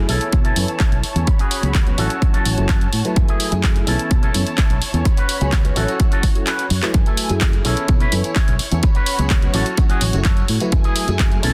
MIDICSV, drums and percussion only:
0, 0, Header, 1, 2, 480
1, 0, Start_track
1, 0, Key_signature, 3, "minor"
1, 0, Tempo, 472441
1, 1296, Time_signature, 4, 2, 24, 8
1, 11715, End_track
2, 0, Start_track
2, 0, Title_t, "Drums"
2, 89, Note_on_c, 9, 46, 89
2, 191, Note_off_c, 9, 46, 0
2, 212, Note_on_c, 9, 54, 82
2, 213, Note_on_c, 9, 42, 37
2, 313, Note_off_c, 9, 54, 0
2, 314, Note_off_c, 9, 42, 0
2, 330, Note_on_c, 9, 42, 64
2, 335, Note_on_c, 9, 36, 114
2, 432, Note_off_c, 9, 42, 0
2, 437, Note_off_c, 9, 36, 0
2, 454, Note_on_c, 9, 42, 39
2, 462, Note_on_c, 9, 54, 41
2, 556, Note_off_c, 9, 42, 0
2, 563, Note_off_c, 9, 54, 0
2, 571, Note_on_c, 9, 46, 107
2, 672, Note_off_c, 9, 46, 0
2, 694, Note_on_c, 9, 42, 37
2, 695, Note_on_c, 9, 54, 75
2, 796, Note_off_c, 9, 42, 0
2, 797, Note_off_c, 9, 54, 0
2, 810, Note_on_c, 9, 39, 109
2, 811, Note_on_c, 9, 42, 60
2, 815, Note_on_c, 9, 36, 119
2, 912, Note_off_c, 9, 39, 0
2, 913, Note_off_c, 9, 42, 0
2, 917, Note_off_c, 9, 36, 0
2, 936, Note_on_c, 9, 42, 37
2, 936, Note_on_c, 9, 54, 39
2, 1038, Note_off_c, 9, 42, 0
2, 1038, Note_off_c, 9, 54, 0
2, 1052, Note_on_c, 9, 46, 86
2, 1153, Note_off_c, 9, 46, 0
2, 1177, Note_on_c, 9, 42, 35
2, 1183, Note_on_c, 9, 54, 76
2, 1278, Note_off_c, 9, 42, 0
2, 1284, Note_off_c, 9, 54, 0
2, 1292, Note_on_c, 9, 42, 65
2, 1295, Note_on_c, 9, 36, 106
2, 1394, Note_off_c, 9, 42, 0
2, 1397, Note_off_c, 9, 36, 0
2, 1416, Note_on_c, 9, 42, 40
2, 1418, Note_on_c, 9, 54, 39
2, 1518, Note_off_c, 9, 42, 0
2, 1519, Note_off_c, 9, 54, 0
2, 1534, Note_on_c, 9, 46, 96
2, 1636, Note_off_c, 9, 46, 0
2, 1658, Note_on_c, 9, 42, 38
2, 1665, Note_on_c, 9, 54, 74
2, 1760, Note_off_c, 9, 42, 0
2, 1766, Note_off_c, 9, 54, 0
2, 1774, Note_on_c, 9, 39, 106
2, 1774, Note_on_c, 9, 42, 63
2, 1776, Note_on_c, 9, 36, 112
2, 1875, Note_off_c, 9, 39, 0
2, 1876, Note_off_c, 9, 42, 0
2, 1877, Note_off_c, 9, 36, 0
2, 1897, Note_on_c, 9, 42, 37
2, 1904, Note_on_c, 9, 54, 38
2, 1998, Note_off_c, 9, 42, 0
2, 2005, Note_off_c, 9, 54, 0
2, 2011, Note_on_c, 9, 46, 88
2, 2113, Note_off_c, 9, 46, 0
2, 2136, Note_on_c, 9, 42, 38
2, 2146, Note_on_c, 9, 54, 77
2, 2238, Note_off_c, 9, 42, 0
2, 2247, Note_off_c, 9, 54, 0
2, 2255, Note_on_c, 9, 36, 118
2, 2255, Note_on_c, 9, 42, 64
2, 2357, Note_off_c, 9, 36, 0
2, 2357, Note_off_c, 9, 42, 0
2, 2378, Note_on_c, 9, 42, 40
2, 2379, Note_on_c, 9, 54, 37
2, 2480, Note_off_c, 9, 42, 0
2, 2481, Note_off_c, 9, 54, 0
2, 2494, Note_on_c, 9, 46, 96
2, 2595, Note_off_c, 9, 46, 0
2, 2618, Note_on_c, 9, 42, 37
2, 2622, Note_on_c, 9, 54, 75
2, 2719, Note_off_c, 9, 42, 0
2, 2723, Note_off_c, 9, 54, 0
2, 2733, Note_on_c, 9, 39, 104
2, 2733, Note_on_c, 9, 42, 63
2, 2736, Note_on_c, 9, 36, 114
2, 2834, Note_off_c, 9, 39, 0
2, 2835, Note_off_c, 9, 42, 0
2, 2837, Note_off_c, 9, 36, 0
2, 2858, Note_on_c, 9, 42, 38
2, 2863, Note_on_c, 9, 54, 36
2, 2960, Note_off_c, 9, 42, 0
2, 2964, Note_off_c, 9, 54, 0
2, 2973, Note_on_c, 9, 46, 92
2, 3074, Note_off_c, 9, 46, 0
2, 3097, Note_on_c, 9, 42, 37
2, 3098, Note_on_c, 9, 54, 79
2, 3199, Note_off_c, 9, 42, 0
2, 3200, Note_off_c, 9, 54, 0
2, 3214, Note_on_c, 9, 42, 65
2, 3216, Note_on_c, 9, 36, 107
2, 3315, Note_off_c, 9, 42, 0
2, 3318, Note_off_c, 9, 36, 0
2, 3338, Note_on_c, 9, 42, 41
2, 3341, Note_on_c, 9, 54, 39
2, 3439, Note_off_c, 9, 42, 0
2, 3442, Note_off_c, 9, 54, 0
2, 3453, Note_on_c, 9, 46, 98
2, 3555, Note_off_c, 9, 46, 0
2, 3576, Note_on_c, 9, 42, 39
2, 3583, Note_on_c, 9, 54, 70
2, 3677, Note_off_c, 9, 42, 0
2, 3684, Note_off_c, 9, 54, 0
2, 3694, Note_on_c, 9, 39, 109
2, 3694, Note_on_c, 9, 42, 68
2, 3697, Note_on_c, 9, 36, 112
2, 3795, Note_off_c, 9, 39, 0
2, 3796, Note_off_c, 9, 42, 0
2, 3798, Note_off_c, 9, 36, 0
2, 3817, Note_on_c, 9, 42, 40
2, 3820, Note_on_c, 9, 54, 35
2, 3919, Note_off_c, 9, 42, 0
2, 3921, Note_off_c, 9, 54, 0
2, 3933, Note_on_c, 9, 46, 88
2, 4034, Note_off_c, 9, 46, 0
2, 4053, Note_on_c, 9, 54, 77
2, 4058, Note_on_c, 9, 42, 39
2, 4154, Note_off_c, 9, 54, 0
2, 4159, Note_off_c, 9, 42, 0
2, 4173, Note_on_c, 9, 42, 64
2, 4176, Note_on_c, 9, 36, 113
2, 4275, Note_off_c, 9, 42, 0
2, 4278, Note_off_c, 9, 36, 0
2, 4294, Note_on_c, 9, 54, 39
2, 4296, Note_on_c, 9, 42, 40
2, 4396, Note_off_c, 9, 54, 0
2, 4398, Note_off_c, 9, 42, 0
2, 4414, Note_on_c, 9, 46, 101
2, 4516, Note_off_c, 9, 46, 0
2, 4533, Note_on_c, 9, 54, 65
2, 4537, Note_on_c, 9, 42, 39
2, 4635, Note_off_c, 9, 54, 0
2, 4639, Note_off_c, 9, 42, 0
2, 4652, Note_on_c, 9, 39, 111
2, 4653, Note_on_c, 9, 42, 64
2, 4656, Note_on_c, 9, 36, 112
2, 4754, Note_off_c, 9, 39, 0
2, 4754, Note_off_c, 9, 42, 0
2, 4758, Note_off_c, 9, 36, 0
2, 4776, Note_on_c, 9, 42, 42
2, 4782, Note_on_c, 9, 54, 40
2, 4878, Note_off_c, 9, 42, 0
2, 4883, Note_off_c, 9, 54, 0
2, 4893, Note_on_c, 9, 46, 89
2, 4995, Note_off_c, 9, 46, 0
2, 5019, Note_on_c, 9, 42, 38
2, 5022, Note_on_c, 9, 54, 66
2, 5120, Note_off_c, 9, 42, 0
2, 5124, Note_off_c, 9, 54, 0
2, 5135, Note_on_c, 9, 36, 106
2, 5135, Note_on_c, 9, 42, 71
2, 5137, Note_on_c, 9, 54, 60
2, 5236, Note_off_c, 9, 42, 0
2, 5237, Note_off_c, 9, 36, 0
2, 5238, Note_off_c, 9, 54, 0
2, 5255, Note_on_c, 9, 54, 34
2, 5257, Note_on_c, 9, 42, 41
2, 5357, Note_off_c, 9, 54, 0
2, 5358, Note_off_c, 9, 42, 0
2, 5373, Note_on_c, 9, 46, 101
2, 5475, Note_off_c, 9, 46, 0
2, 5497, Note_on_c, 9, 42, 42
2, 5497, Note_on_c, 9, 54, 77
2, 5598, Note_off_c, 9, 54, 0
2, 5599, Note_off_c, 9, 42, 0
2, 5612, Note_on_c, 9, 39, 111
2, 5612, Note_on_c, 9, 42, 66
2, 5615, Note_on_c, 9, 36, 109
2, 5713, Note_off_c, 9, 39, 0
2, 5714, Note_off_c, 9, 42, 0
2, 5717, Note_off_c, 9, 36, 0
2, 5738, Note_on_c, 9, 42, 38
2, 5738, Note_on_c, 9, 54, 31
2, 5840, Note_off_c, 9, 42, 0
2, 5840, Note_off_c, 9, 54, 0
2, 5853, Note_on_c, 9, 46, 88
2, 5955, Note_off_c, 9, 46, 0
2, 5978, Note_on_c, 9, 42, 41
2, 5978, Note_on_c, 9, 54, 70
2, 6079, Note_off_c, 9, 54, 0
2, 6080, Note_off_c, 9, 42, 0
2, 6093, Note_on_c, 9, 42, 70
2, 6095, Note_on_c, 9, 36, 111
2, 6194, Note_off_c, 9, 42, 0
2, 6197, Note_off_c, 9, 36, 0
2, 6216, Note_on_c, 9, 42, 42
2, 6219, Note_on_c, 9, 54, 34
2, 6317, Note_off_c, 9, 42, 0
2, 6321, Note_off_c, 9, 54, 0
2, 6332, Note_on_c, 9, 46, 101
2, 6335, Note_on_c, 9, 36, 58
2, 6433, Note_off_c, 9, 46, 0
2, 6436, Note_off_c, 9, 36, 0
2, 6456, Note_on_c, 9, 42, 40
2, 6459, Note_on_c, 9, 54, 69
2, 6557, Note_off_c, 9, 42, 0
2, 6561, Note_off_c, 9, 54, 0
2, 6573, Note_on_c, 9, 39, 109
2, 6573, Note_on_c, 9, 42, 67
2, 6585, Note_on_c, 9, 54, 56
2, 6674, Note_off_c, 9, 39, 0
2, 6674, Note_off_c, 9, 42, 0
2, 6687, Note_off_c, 9, 54, 0
2, 6695, Note_on_c, 9, 42, 42
2, 6708, Note_on_c, 9, 54, 34
2, 6796, Note_off_c, 9, 42, 0
2, 6809, Note_off_c, 9, 54, 0
2, 6810, Note_on_c, 9, 46, 89
2, 6912, Note_off_c, 9, 46, 0
2, 6935, Note_on_c, 9, 39, 77
2, 6935, Note_on_c, 9, 42, 40
2, 6940, Note_on_c, 9, 54, 70
2, 7037, Note_off_c, 9, 39, 0
2, 7037, Note_off_c, 9, 42, 0
2, 7042, Note_off_c, 9, 54, 0
2, 7052, Note_on_c, 9, 42, 66
2, 7055, Note_on_c, 9, 36, 109
2, 7058, Note_on_c, 9, 54, 70
2, 7153, Note_off_c, 9, 42, 0
2, 7156, Note_off_c, 9, 36, 0
2, 7159, Note_off_c, 9, 54, 0
2, 7175, Note_on_c, 9, 42, 41
2, 7185, Note_on_c, 9, 54, 40
2, 7276, Note_off_c, 9, 42, 0
2, 7287, Note_off_c, 9, 54, 0
2, 7289, Note_on_c, 9, 46, 107
2, 7390, Note_off_c, 9, 46, 0
2, 7412, Note_on_c, 9, 42, 40
2, 7412, Note_on_c, 9, 54, 72
2, 7513, Note_off_c, 9, 42, 0
2, 7514, Note_off_c, 9, 54, 0
2, 7528, Note_on_c, 9, 39, 126
2, 7529, Note_on_c, 9, 42, 69
2, 7535, Note_on_c, 9, 36, 117
2, 7630, Note_off_c, 9, 39, 0
2, 7630, Note_off_c, 9, 42, 0
2, 7636, Note_off_c, 9, 36, 0
2, 7654, Note_on_c, 9, 42, 41
2, 7661, Note_on_c, 9, 54, 40
2, 7755, Note_off_c, 9, 42, 0
2, 7762, Note_off_c, 9, 54, 0
2, 7770, Note_on_c, 9, 46, 91
2, 7872, Note_off_c, 9, 46, 0
2, 7894, Note_on_c, 9, 42, 41
2, 7903, Note_on_c, 9, 54, 77
2, 7995, Note_off_c, 9, 42, 0
2, 8005, Note_off_c, 9, 54, 0
2, 8010, Note_on_c, 9, 42, 72
2, 8015, Note_on_c, 9, 36, 116
2, 8016, Note_on_c, 9, 54, 69
2, 8112, Note_off_c, 9, 42, 0
2, 8116, Note_off_c, 9, 36, 0
2, 8118, Note_off_c, 9, 54, 0
2, 8133, Note_on_c, 9, 42, 41
2, 8144, Note_on_c, 9, 54, 41
2, 8234, Note_off_c, 9, 42, 0
2, 8246, Note_off_c, 9, 54, 0
2, 8250, Note_on_c, 9, 46, 106
2, 8351, Note_off_c, 9, 46, 0
2, 8373, Note_on_c, 9, 42, 41
2, 8378, Note_on_c, 9, 54, 78
2, 8475, Note_off_c, 9, 42, 0
2, 8480, Note_off_c, 9, 54, 0
2, 8491, Note_on_c, 9, 39, 118
2, 8492, Note_on_c, 9, 42, 66
2, 8495, Note_on_c, 9, 36, 116
2, 8592, Note_off_c, 9, 39, 0
2, 8593, Note_off_c, 9, 42, 0
2, 8596, Note_off_c, 9, 36, 0
2, 8614, Note_on_c, 9, 42, 41
2, 8619, Note_on_c, 9, 54, 39
2, 8716, Note_off_c, 9, 42, 0
2, 8720, Note_off_c, 9, 54, 0
2, 8730, Note_on_c, 9, 46, 91
2, 8832, Note_off_c, 9, 46, 0
2, 8855, Note_on_c, 9, 42, 38
2, 8857, Note_on_c, 9, 54, 76
2, 8956, Note_off_c, 9, 42, 0
2, 8958, Note_off_c, 9, 54, 0
2, 8969, Note_on_c, 9, 42, 66
2, 8975, Note_on_c, 9, 36, 121
2, 8975, Note_on_c, 9, 54, 69
2, 9071, Note_off_c, 9, 42, 0
2, 9077, Note_off_c, 9, 36, 0
2, 9077, Note_off_c, 9, 54, 0
2, 9092, Note_on_c, 9, 42, 40
2, 9096, Note_on_c, 9, 54, 37
2, 9194, Note_off_c, 9, 42, 0
2, 9198, Note_off_c, 9, 54, 0
2, 9209, Note_on_c, 9, 46, 112
2, 9310, Note_off_c, 9, 46, 0
2, 9334, Note_on_c, 9, 42, 39
2, 9346, Note_on_c, 9, 54, 79
2, 9435, Note_off_c, 9, 42, 0
2, 9448, Note_off_c, 9, 54, 0
2, 9449, Note_on_c, 9, 39, 120
2, 9449, Note_on_c, 9, 42, 65
2, 9456, Note_on_c, 9, 36, 118
2, 9550, Note_off_c, 9, 39, 0
2, 9551, Note_off_c, 9, 42, 0
2, 9557, Note_off_c, 9, 36, 0
2, 9575, Note_on_c, 9, 42, 38
2, 9584, Note_on_c, 9, 54, 39
2, 9676, Note_off_c, 9, 42, 0
2, 9686, Note_off_c, 9, 54, 0
2, 9689, Note_on_c, 9, 46, 97
2, 9791, Note_off_c, 9, 46, 0
2, 9814, Note_on_c, 9, 42, 39
2, 9814, Note_on_c, 9, 54, 73
2, 9916, Note_off_c, 9, 42, 0
2, 9916, Note_off_c, 9, 54, 0
2, 9931, Note_on_c, 9, 42, 70
2, 9936, Note_on_c, 9, 36, 123
2, 9939, Note_on_c, 9, 54, 66
2, 10032, Note_off_c, 9, 42, 0
2, 10037, Note_off_c, 9, 36, 0
2, 10041, Note_off_c, 9, 54, 0
2, 10054, Note_on_c, 9, 42, 41
2, 10054, Note_on_c, 9, 54, 43
2, 10156, Note_off_c, 9, 42, 0
2, 10156, Note_off_c, 9, 54, 0
2, 10170, Note_on_c, 9, 46, 109
2, 10272, Note_off_c, 9, 46, 0
2, 10293, Note_on_c, 9, 54, 90
2, 10295, Note_on_c, 9, 42, 40
2, 10394, Note_off_c, 9, 54, 0
2, 10396, Note_off_c, 9, 42, 0
2, 10410, Note_on_c, 9, 39, 122
2, 10411, Note_on_c, 9, 42, 67
2, 10416, Note_on_c, 9, 36, 127
2, 10512, Note_off_c, 9, 39, 0
2, 10513, Note_off_c, 9, 42, 0
2, 10518, Note_off_c, 9, 36, 0
2, 10534, Note_on_c, 9, 42, 41
2, 10544, Note_on_c, 9, 54, 43
2, 10635, Note_off_c, 9, 42, 0
2, 10646, Note_off_c, 9, 54, 0
2, 10652, Note_on_c, 9, 46, 92
2, 10753, Note_off_c, 9, 46, 0
2, 10774, Note_on_c, 9, 42, 38
2, 10780, Note_on_c, 9, 54, 82
2, 10876, Note_off_c, 9, 42, 0
2, 10882, Note_off_c, 9, 54, 0
2, 10893, Note_on_c, 9, 42, 61
2, 10896, Note_on_c, 9, 36, 118
2, 10994, Note_off_c, 9, 42, 0
2, 10998, Note_off_c, 9, 36, 0
2, 11016, Note_on_c, 9, 42, 39
2, 11025, Note_on_c, 9, 54, 39
2, 11117, Note_off_c, 9, 42, 0
2, 11127, Note_off_c, 9, 54, 0
2, 11131, Note_on_c, 9, 46, 111
2, 11233, Note_off_c, 9, 46, 0
2, 11256, Note_on_c, 9, 42, 37
2, 11259, Note_on_c, 9, 54, 78
2, 11357, Note_off_c, 9, 42, 0
2, 11360, Note_off_c, 9, 54, 0
2, 11372, Note_on_c, 9, 39, 119
2, 11373, Note_on_c, 9, 42, 62
2, 11377, Note_on_c, 9, 36, 121
2, 11474, Note_off_c, 9, 39, 0
2, 11474, Note_off_c, 9, 42, 0
2, 11479, Note_off_c, 9, 36, 0
2, 11497, Note_on_c, 9, 42, 37
2, 11502, Note_on_c, 9, 54, 40
2, 11599, Note_off_c, 9, 42, 0
2, 11603, Note_off_c, 9, 54, 0
2, 11615, Note_on_c, 9, 46, 101
2, 11715, Note_off_c, 9, 46, 0
2, 11715, End_track
0, 0, End_of_file